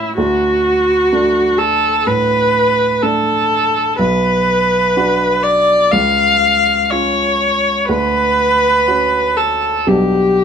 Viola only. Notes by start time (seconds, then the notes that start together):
Already playing: E4
0.17 F#4
1.58 A4
2.07 B4
3.03 A4
3.99 B4
5.43 D5
5.92 F5
6.90 C#5
7.89 B4
9.37 A4
9.88 G4